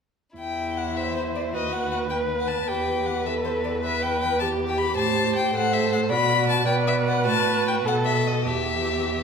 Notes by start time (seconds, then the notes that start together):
0.36 E2 E4 G5
0.77 F#5
0.97 C5 E5
1.16 C5
1.35 D5
1.53 D#2 F#4 B4 D#5
1.73 F#5
1.91 F#5
2.10 B4 G5
2.39 F#5
2.47 A5
2.67 E2 G4 B4 G5
3.06 F#5
3.26 A4 E5
3.44 C5
3.64 D5
3.83 B4 E5
4.02 G5
4.21 G5
4.40 G4 A5
4.67 G5
4.77 B5
4.96 A2 C5 A5
5.35 G5
5.54 A2 A4 C5 F#5
5.73 E5
5.92 F#5
6.10 B2 F#4 D5 B5
6.49 A5
6.66 B2 B4 D5 G5
6.87 E5
7.08 F#5
7.25 A2 F#4 A5
7.67 G5
7.84 B2 A4 F#5
8.05 E5
8.27 D#5
8.46 E2 G4 E5